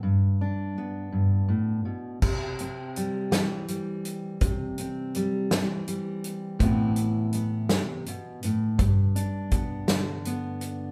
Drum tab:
CC |------|x-----|------|------|
HH |------|-xxxxx|xxxxxx|xxxxxx|
SD |------|---o--|---o--|---o--|
BD |------|o-----|o-----|o-----|

CC |------|
HH |xxxxxx|
SD |---o--|
BD |o-o---|